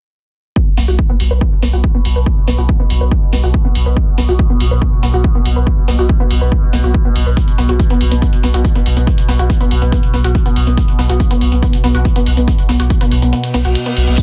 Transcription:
0.56 B2 B3, kick
0.77 B1 B3, open hi-hat
0.88 B1 F#4
0.99 kick
1.09 B3
1.20 B1, open hi-hat
1.31 B1 B4
1.41 B3, kick
1.63 B1 B3, open hi-hat
1.73 B1 F#4
1.84 kick
1.95 B3
2.05 B1, open hi-hat
2.16 B1 B4
2.26 B3, kick
2.48 B1 B3, open hi-hat
2.58 B1 F#4
2.69 kick
2.80 B3
2.90 B1, open hi-hat
3.01 B1 B4
3.11 B3, kick
3.33 B1 B3, open hi-hat
3.44 B1 F#4
3.54 kick
3.65 B3
3.75 B1, open hi-hat
3.86 B1 B4
3.97 B3, kick
4.18 B1 B3, open hi-hat
4.29 B1 F#4
4.39 kick
4.50 B3
4.60 B1, open hi-hat
4.71 B1 B4
4.82 B3, kick
5.03 B1 B3, open hi-hat
5.14 B1 F#4
5.24 kick
5.35 B3
5.46 B1, open hi-hat
5.56 B1 B4
5.67 B3, kick
5.88 B1 B3, open hi-hat
5.99 B1 F#4
6.09 kick
6.20 B3
6.31 B1, open hi-hat
6.41 B1 B4
6.52 B3, kick
6.73 B1 B3, open hi-hat
6.84 B1 F#4
6.94 kick
7.05 B3
7.16 B1, open hi-hat
7.26 B1 B4
7.37 B3, kick, closed hi-hat
7.48 closed hi-hat
7.58 B1 B3, open hi-hat
7.69 B1 F#4, closed hi-hat
7.80 kick, closed hi-hat
7.90 B3, closed hi-hat
8.01 B1, open hi-hat
8.12 B1 B3, closed hi-hat
8.22 B3, kick, closed hi-hat
8.33 closed hi-hat
8.43 B1 B3, open hi-hat
8.54 B1 F#4, closed hi-hat
8.65 kick, closed hi-hat
8.75 B3, closed hi-hat
8.86 B1, open hi-hat
8.97 B1 B3, closed hi-hat
9.07 B3, kick, closed hi-hat
9.18 closed hi-hat
9.28 B1 B3, open hi-hat
9.39 B1 F#4, closed hi-hat
9.50 kick, closed hi-hat
9.61 B3, closed hi-hat
9.71 B1, open hi-hat
9.82 B1 B3, closed hi-hat
9.92 B3, kick, closed hi-hat
10.03 closed hi-hat
10.14 B1 B3, open hi-hat
10.24 B1 F#4, closed hi-hat
10.35 kick, closed hi-hat
10.46 B3, closed hi-hat
10.56 B1, open hi-hat
10.67 B1 B3, closed hi-hat
10.77 B3, kick, closed hi-hat
10.88 closed hi-hat
10.99 B1 B3, open hi-hat
11.10 B1 F#4, closed hi-hat
11.20 kick, closed hi-hat
11.31 B3, closed hi-hat
11.41 B1, open hi-hat
11.52 B1 B3, closed hi-hat
11.63 B3, kick, closed hi-hat
11.73 closed hi-hat
11.84 B1 B3, open hi-hat
11.95 B1 F#4, closed hi-hat
12.05 kick, closed hi-hat
12.16 B3, closed hi-hat
12.26 B1, open hi-hat
12.37 B1 B3, closed hi-hat
12.48 B3, kick, closed hi-hat
12.58 closed hi-hat
12.69 B1 B3, open hi-hat
12.80 B1 F#4, closed hi-hat
12.90 kick, closed hi-hat
13.01 B3, closed hi-hat
13.12 B1, open hi-hat
13.22 B1 B3, closed hi-hat
13.33 B3, closed hi-hat, reverse cymbal
13.44 closed hi-hat
13.54 B1 B3, open hi-hat
13.65 B1 F#4, closed hi-hat
13.75 closed hi-hat
13.86 B3, closed hi-hat
13.97 B1, open hi-hat
14.07 B1 B3, closed hi-hat
14.18 B3, kick, closed hi-hat, tambourine

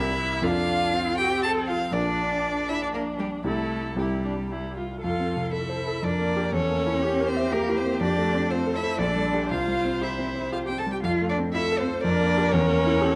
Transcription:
Already playing: C2 C4 E4 G4 A#4 E5
0.42 F2 C4 D4 F4 A4 F5
0.94 C4
1.18 G4 G5
1.43 A4 A5
1.67 F4 F5
1.92 A#1 D4 F4 A#4 D5
2.69 E4 E5
2.82 D4 D5
2.93 A#3 A#4
3.18 G3 G4
3.44 C2 A3 C4 E4 G4 A4
3.96 C2 G3 C4 E4 G4
4.25 D4
4.51 E4
4.77 F4
5.02 F2 F4 A4 F5
5.20 C4
5.37 C3
5.52 E4 A4 E5
5.69 C5
5.87 A4
6.03 F2 D4 A#4 D5
6.20 A#3
6.36 D4 G4
6.53 E2 C#4 A4 C#5
6.70 A#3
6.87 E4
7.03 G4
7.20 A#4
7.28 C4 C5
7.37 E5
7.52 A#3 G4 A#4
7.69 E4
7.76 C4 C5
7.85 A#3
8.01 F2 D4 D5
8.17 A3
8.34 C4
8.50 C4 F4 A4 C5
8.67 A4
8.76 E4 E5
8.83 C5
8.98 A#1 D4 D5
9.16 G3
9.33 D4 G4
9.50 C2 F4 C5 F5
9.68 G3
9.85 C4
10.01 E4 G4 E5
10.19 C4
10.36 C5
10.52 F4 G4 F5
10.65 C4 G4 G5
10.78 A4 A5
10.86 G3
10.92 G4 G5
11.03 F2 F4 F5
11.21 A3
11.29 D4 D5
11.38 C4
11.53 E4 F4 A4 E5
11.72 A4
11.79 C4 C5
11.88 C5
12.03 F2 D4 A#4 D5
12.21 A#3
12.37 D4 G4
12.52 E2 C#4 C#5
12.69 A#3
12.86 E4
13.01 G4 A4

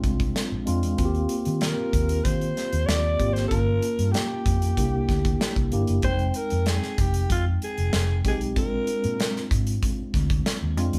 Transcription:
Already playing: G#3 C4 D4 F4
0.04 C2, kick, closed hi-hat
0.20 kick, closed hi-hat
0.36 snare, closed hi-hat
0.52 A#1
0.66 F2 G#3 C4 D4 F4, closed hi-hat
0.83 E2, closed hi-hat
0.97 D#2 A#3 C4 F4 F#4, kick, closed hi-hat
1.05 G4
1.15 closed hi-hat
1.29 closed hi-hat
1.45 D#3, closed hi-hat
1.61 A#4, snare, closed hi-hat
1.93 D#2, kick, closed hi-hat
2.09 closed hi-hat
2.24 D#3 C5, kick, closed hi-hat
2.41 closed hi-hat
2.57 snare, closed hi-hat
2.73 D#2, closed hi-hat
2.86 D#2 D5, snare, closed hi-hat
3.19 G#1 A#3 C4 F4 G4, kick, closed hi-hat
3.33 C5, snare, closed hi-hat
3.48 G1 A#3 C#4 F4 A#4 A5, kick, closed hi-hat
3.82 closed hi-hat
3.99 G2, closed hi-hat
4.12 G4, snare, closed hi-hat
4.46 F2, kick, closed hi-hat
4.62 closed hi-hat
4.77 C2 A#3 D4 E4 G4, kick, closed hi-hat
5.09 D2, kick, snare, closed hi-hat
5.25 kick, closed hi-hat
5.41 snare, closed hi-hat
5.56 C2, kick, closed hi-hat
5.72 G1 A#3 D4 E4 G4, closed hi-hat
5.87 F#1, closed hi-hat
6.02 G#3 C4 D#4 C5 G5, kick, closed hi-hat
6.19 closed hi-hat
6.29 C5
6.34 A#4, closed hi-hat
6.50 F2, closed hi-hat
6.66 G#4, snare, closed hi-hat
6.83 snare
6.98 F1 G4, kick, closed hi-hat
7.14 closed hi-hat
7.30 F2 F4, kick, closed hi-hat
7.62 G#4, closed hi-hat
7.78 F1, closed hi-hat
7.93 F1, snare, closed hi-hat
8.25 B1 G#3 C4 D#4 G4 G#4, kick, closed hi-hat
8.41 closed hi-hat
8.56 A#1 G#3 C4 D4 F4 A#4, kick, closed hi-hat
8.87 closed hi-hat
9.04 A#2, closed hi-hat
9.20 snare, closed hi-hat
9.36 snare
9.51 G#2, kick, closed hi-hat
9.67 closed hi-hat
9.83 kick, closed hi-hat
10.14 D2, kick, snare, closed hi-hat
10.30 kick, closed hi-hat
10.46 snare, closed hi-hat
10.62 D#2
10.77 F2 G#3 C4 D4 F4, closed hi-hat
10.93 E2, closed hi-hat

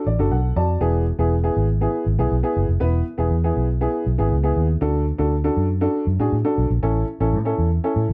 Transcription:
0.06 A1 D5
0.19 F#1 D4 F#4 A4
0.31 B1 A4 F#5
0.56 F2 F#4 D5 A5
0.81 E1 B3 E4 G#4
1.19 E1 B3 E4 G#4
1.44 B3 E4 G#4
1.56 G#1
1.81 B3 E4 G#4
2.06 G#1
2.19 B1 B3 E4 G#4
2.31 B1
2.43 B3 E4 G#4
2.56 F#1
2.69 F1
2.80 E1 B3 E4 B4
3.18 E1 B3 E4 G#4
3.31 E2
3.44 B3 E4 G#4
3.56 B1
3.81 B3 E4 G#4
4.06 B1
4.18 G#1 B3 E4 G#4
4.32 C#2
4.43 B3 E4 G#4
4.56 D#2
4.81 D2 D4 F#4 A4
5.18 D2 D4 F#4 A4
5.44 D4 F#4 A4
5.57 F#2
5.81 D4 F#4 A4
6.07 F#2
6.20 A2 D4 F#4 G#4
6.32 A2
6.45 D4 F#4 A4
6.58 B1
6.70 A#1
6.83 A1 C#4 E4 A4
7.20 A1 C#4 E4 A4
7.33 A2
7.45 C#4 E4 A4
7.58 E2
7.84 C#4 E4 A4
7.96 A2
8.09 A1

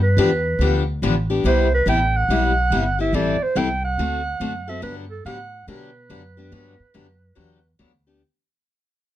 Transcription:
Already playing: G2
0.03 B4
0.17 E2 D3 F3 B3 D4 G4
0.59 D2 D3 F3 B3 D4 G4
1.02 A1 D3 F3 B3 D4 G4
1.30 B3 D4 G4
1.44 C2 C3 G3 B3 E4 G4 C5
1.74 B4
1.86 A1 C3 G3 B3 E4 G4 G5
2.16 F#5
2.28 B1 C3 G3 B3 E4 G4
2.70 G1 C3 G3 B3 E4 G4
2.99 B3 E4 G4 E5
3.13 A1 E3 G3 C4 E4 A4 D5
3.40 C5, muted upright bass stroke
3.55 C2 E3 G3 C4 E4 A4 G5
3.84 F#5
3.98 D2 D3 A3 C4 F#4 A4
4.40 F#2 D3 A3 C4 F#4 A4
4.68 C4 F#4 A4 E5
4.82 G2 D3 F#3 B3 D4 G4 B4
5.10 A4
5.25 A2 D3 F#3 B3 D4 G4 F#5
5.67 B2 D3 F#3 B3 D4 G4 B4
6.09 F#2 D3 F#3 B3 D4 G4
6.37 B3 D4 G4
6.52 G2 D3 F#3 B3 D4 G4
6.79 muted upright bass stroke
6.94 F#2 D3 F#3 B3 D4 G4
7.35 E2 D3 F#3 B3 D4 G4
7.79 D2 D3 F#3 B3 D4 G4
8.07 B3 D4 G4

